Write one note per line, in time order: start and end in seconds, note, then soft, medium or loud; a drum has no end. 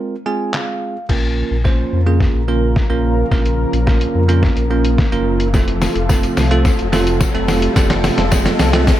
0.00 0.15 G#3 medium
0.00 0.15 C4 medium
0.00 0.15 F4 medium
0.00 0.15 A#4 medium
0.26 0.96 G#3 medium
0.26 0.96 C4 medium
0.26 0.96 F4 medium
0.26 0.96 G#4 medium
0.26 0.52 G#5 medium
0.54 1.06 F5 medium
0.54 snare medium
0.54 clap loud
1.09 1.44 A#1 medium
1.09 5.50 C#3 medium
1.09 5.50 F3 medium
1.09 1.56 A#3 medium
1.09 5.50 A#3 medium
1.09 1.56 C#4 medium
1.09 1.56 F4 medium
1.09 5.50 F4 medium
1.09 5.50 A#4 medium
1.09 1.56 A#4 medium
1.09 kick loud
1.09 snare medium
1.09 crash medium
1.09 riser medium
1.51 1.85 A#1 medium
1.65 2.00 A#3 medium
1.65 2.00 C#4 medium
1.65 2.00 F4 medium
1.65 2.00 C5 medium
1.65 kick loud
1.65 snare medium
1.93 2.27 F2 loud
2.06 2.41 A#3 medium
2.06 2.41 C#4 medium
2.06 2.42 F4 medium
2.06 2.42 G#4 medium
2.20 kick loud
2.20 snare medium
2.34 2.80 A#1 medium
2.48 2.83 A#3 medium
2.48 2.83 C#4 medium
2.48 2.83 F4 medium
2.48 2.83 A#4 medium
2.76 kick loud
2.76 snare medium
2.90 3.24 A#1 loud
2.90 3.25 A#3 medium
2.90 3.25 C#4 medium
2.90 3.25 F4 medium
2.90 3.25 A#4 medium
3.31 3.66 A#1 loud
3.31 3.78 A#3 medium
3.31 3.78 C#4 medium
3.31 3.78 F4 medium
3.31 3.78 A#4 medium
3.31 kick loud
3.31 snare medium
3.46 closed hi-hat soft
3.73 4.08 A#1 loud
3.73 closed hi-hat medium
3.87 4.22 A#3 medium
3.87 4.22 C#4 medium
3.87 4.22 F4 medium
3.87 4.22 A#4 medium
3.87 kick medium
3.87 snare medium
4.01 closed hi-hat medium
4.15 4.49 F2 loud
4.29 4.64 A#3 medium
4.29 4.64 C#4 medium
4.29 4.64 F4 medium
4.29 4.64 A#4 medium
4.29 closed hi-hat medium
4.43 kick loud
4.43 snare medium
4.57 5.02 A#1 medium
4.57 closed hi-hat soft
4.70 5.05 A#3 medium
4.70 5.05 C#4 medium
4.70 5.05 F4 medium
4.70 5.06 A#4 medium
4.85 closed hi-hat medium
4.98 kick loud
4.98 snare medium
5.12 5.55 F#1 loud
5.12 5.47 A#3 medium
5.12 5.47 C#4 medium
5.12 5.47 F4 medium
5.12 5.47 A#4 medium
5.12 closed hi-hat soft
5.40 closed hi-hat medium
5.54 5.88 F1 loud
5.54 9.00 C3 medium
5.54 9.00 F3 medium
5.54 6.00 A3 medium
5.54 9.00 A3 medium
5.54 6.00 C4 medium
5.54 9.00 F4 medium
5.54 6.00 F4 medium
5.54 9.00 A4 medium
5.54 6.01 A4 medium
5.54 kick loud
5.54 snare medium
5.54 tambourine medium
5.68 closed hi-hat medium
5.82 snare medium
5.82 open hi-hat medium
5.82 tambourine soft
5.96 6.30 F1 loud
5.96 closed hi-hat medium
6.09 6.44 A3 medium
6.09 6.44 C4 medium
6.09 6.44 F4 medium
6.09 6.44 A4 loud
6.09 kick loud
6.09 snare medium
6.09 tambourine medium
6.23 closed hi-hat medium
6.23 tambourine soft
6.37 6.71 C2 loud
6.37 snare medium
6.37 open hi-hat medium
6.37 tambourine medium
6.51 6.86 A3 medium
6.51 6.86 C4 medium
6.51 6.86 F4 medium
6.51 6.86 A4 loud
6.51 closed hi-hat medium
6.65 kick loud
6.65 snare medium
6.65 tambourine medium
6.79 7.25 F1 medium
6.79 closed hi-hat soft
6.92 7.28 A3 medium
6.92 7.28 C4 medium
6.92 7.28 F4 medium
6.92 7.28 A4 medium
6.92 snare loud
6.92 open hi-hat medium
6.92 tambourine medium
7.07 closed hi-hat medium
7.07 tambourine soft
7.21 kick loud
7.21 snare medium
7.21 tambourine medium
7.34 7.69 F1 loud
7.34 7.69 A3 medium
7.34 7.69 C4 medium
7.34 7.69 F4 medium
7.34 7.69 A4 medium
7.34 closed hi-hat soft
7.48 snare loud
7.48 open hi-hat medium
7.48 tambourine medium
7.62 closed hi-hat medium
7.76 8.10 F1 loud
7.76 8.23 A3 medium
7.76 8.23 C4 medium
7.76 8.23 F4 medium
7.76 8.23 A4 loud
7.76 kick loud
7.76 snare loud
7.76 tambourine medium
7.76 shaker medium
7.90 snare loud
7.90 closed hi-hat soft
7.90 shaker medium
8.04 snare loud
8.04 open hi-hat medium
8.04 tambourine medium
8.04 shaker medium
8.18 8.52 F1 loud
8.18 snare loud
8.18 closed hi-hat medium
8.18 shaker medium
8.31 8.66 A3 medium
8.31 8.67 C4 medium
8.31 8.67 F4 medium
8.31 8.67 A4 medium
8.31 kick medium
8.31 snare loud
8.31 tambourine medium
8.31 shaker medium
8.46 snare loud
8.46 closed hi-hat medium
8.46 tambourine soft
8.46 shaker medium
8.59 8.94 C2 loud
8.59 snare loud
8.59 open hi-hat medium
8.59 tambourine medium
8.59 shaker medium
8.73 9.00 A3 medium
8.73 9.00 C4 medium
8.73 9.00 F4 medium
8.73 9.00 A4 loud
8.73 snare loud
8.73 closed hi-hat medium
8.73 shaker medium
8.87 kick loud
8.87 snare loud
8.87 tambourine medium
8.87 shaker medium